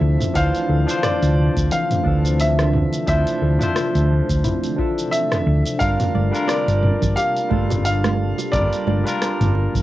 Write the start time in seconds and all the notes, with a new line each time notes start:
Already playing: C3 D3 F3 A3 C4 D4 E4 A4 C5 E5
0.01 D2
0.21 mid tom, open hi-hat, shaker
0.34 D2 E3 F3 D4 C5 F5, kick, open hi-hat, shaker
0.55 open hi-hat, shaker
0.69 D2 A4
0.86 F3 D4 F5, shaker
0.91 C5
1.03 F4 D5, cross-stick, mid tom, open hi-hat, shaker
1.22 D2, open hi-hat, shaker
1.57 D2, kick, open hi-hat, shaker
1.71 E3 F5, open hi-hat, shaker
1.91 mid tom, open hi-hat, shaker
2.03 D2 E3 F3 D4, kick
2.07 A4
2.25 open hi-hat, shaker
2.40 E5, open hi-hat, shaker
2.59 cross-stick, open hi-hat, shaker
2.73 mid tom
2.93 open hi-hat, shaker
3.07 D2 F3 D4 E4 C5 E5, kick, open hi-hat, shaker
3.27 open hi-hat, shaker
3.42 D2 A4
3.59 F3 D4 E5, mid tom, open hi-hat, shaker
3.63 C5
3.76 F4, cross-stick, open hi-hat, shaker
3.95 D2, open hi-hat, shaker
4.29 D2, kick, open hi-hat, shaker
4.44 E4, kick, mid tom, open hi-hat, shaker
4.63 open hi-hat, shaker
4.76 F3 D4 F4 E5, kick
4.81 A4
4.98 open hi-hat, shaker
5.11 E5, open hi-hat, shaker
5.32 cross-stick, mid tom, open hi-hat, shaker
5.47 D2
5.66 open hi-hat, shaker
5.79 G1 G3 A#3 D4 F4 A#4 F5 A5, kick, open hi-hat, shaker
6.00 mid tom, open hi-hat, high bongo, shaker
6.15 G1 D5, high conga
6.31 G3 D4 F4, shaker
6.36 A#4
6.48 A#4 D5, cross-stick, open hi-hat, high bongo, shaker
6.68 G1, open hi-hat, shaker
6.83 mid tom
7.02 G1, kick, open hi-hat, low conga, shaker
7.16 G4 F5, open hi-hat, high bongo, shaker
7.37 open hi-hat, shaker
7.49 G1 G3 D4 F4, kick, high conga
7.53 A4
7.70 mid tom, open hi-hat, high bongo, shaker
7.85 F5, open hi-hat, shaker
8.04 cross-stick, open hi-hat, high conga, shaker
8.38 open hi-hat, high bongo, shaker
8.52 G1 G3 D4 F4 A#4 D5, kick, mid tom, open hi-hat, shaker
8.73 open hi-hat, shaker
8.87 G1 D5, high bongo, high conga
9.04 G3 D4 F4, open hi-hat, shaker
9.08 A#4
9.22 A#4, cross-stick, open hi-hat, shaker
9.41 G1, mid tom, open hi-hat, shaker
9.55 high bongo
9.75 G1, kick, open hi-hat, low conga, shaker